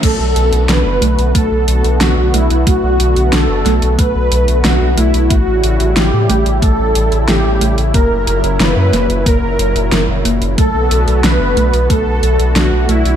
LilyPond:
<<
  \new Staff \with { instrumentName = "Supersaw synth" } { \time 4/4 \key b \minor \tempo 4 = 91 a'4 b'4 a'4 fis'8 e'8 | fis'4 a'4 b'4 fis'8 e'8 | fis'4 g'4 a'4 g'8. r16 | ais'4 b'4 ais'4. r8 |
a'4 b'4 a'4 fis'8 e'8 | }
  \new Staff \with { instrumentName = "Analog synth pad" } { \time 4/4 \key b \minor << { <d fis'>1~ | <d fis'>1 | <cis e'>1~ | <cis e'>1 |
<d fis'>1 | } \\ { <a b>1~ | <a b>1 | g1 | <ais, fis>1 |
<a b>1 | } >> }
  \new Staff \with { instrumentName = "Synth arpeggio sound" } { \time 4/4 \key b \minor a8 r8 d'8 a8 a8 r8 d'8 a8 | a8 r8 d'8 a8 a8 r8 d'8 a8 | a8 r8 e'8 a8 a8 r8 e'8 a8 | ais8 r8 e'8 ais8 ais8 r8 e'8 ais8 |
a8 r8 d'8 a8 a8 r8 d'8 a8 | }
  \new Staff \with { instrumentName = "Analog synth bass" } { \clef bass \time 4/4 \key b \minor b,,16 b,,16 b,,16 b,,16 b,,16 fis,,16 b,,16 b,,16 b,,16 b,,16 b,,16 b,,16 b,,16 b,,16 b,,16 b,,16 | b,,16 b,,16 b,,16 b,,16 b,,16 fis,,16 b,,16 b,,16 b,,16 b,,16 b,,16 b,,16 b,,16 b,,16 b,,16 b,,16 | a,,16 a,,16 a,,16 a,,16 a,,16 a,16 a,,16 a,,16 a,,16 a,,16 a,,16 a,,16 a,,16 a,,16 a,,16 a,,16 | fis,,16 fis,,16 fis,,16 fis,,16 fis,,16 fis,16 fis,,16 fis,,16 fis,,16 fis,,16 fis,,16 fis,,16 fis,,16 fis,,16 fis,,16 fis,,16 |
b,,16 b,,16 b,,16 b,,16 b,,16 fis,,16 b,,16 b,,16 b,,16 b,,16 b,,16 b,,16 b,,16 b,,16 b,,16 b,,16 | }
  \new DrumStaff \with { instrumentName = "Drums" } \drummode { \time 4/4 <cymc hh bd>8 hh16 hh16 <hh sn>8 hh16 hh16 <hh bd>8 hh16 hh16 <hh sn>8 hh16 hh16 | <hh bd>8 hh16 hh16 <hh sn>8 <hh sn>16 hh16 <hh bd>8 hh16 hh16 <hh sn>8 hh16 hh16 | <hh bd>8 hh16 hh16 <hh sn>8 hh16 hh16 <hh bd>8 hh16 hh16 <hh sn>8 hh16 hh16 | <hh bd>8 hh16 hh16 <hh sn>8 <hh sn>16 hh16 <hh bd>8 hh16 hh16 <hh sn>8 hh16 hh16 |
<hh bd>8 hh16 hh16 <hh sn>8 hh16 hh16 <hh bd>8 hh16 hh16 <hh sn>8 hh16 hh16 | }
>>